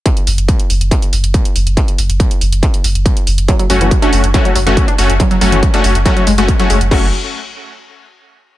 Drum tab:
CC |----------------|----------------|----------------|----------------|
HH |xxoxxxoxxxoxxxox|xxoxxxoxxxoxxxox|xxoxxxoxxxoxxxox|xxoxxxoxxxoxxxox|
BD |o---o---o---o---|o---o---o---o---|o---o---o---o---|o---o---o---o---|

CC |x---------------|
HH |----------------|
BD |o---------------|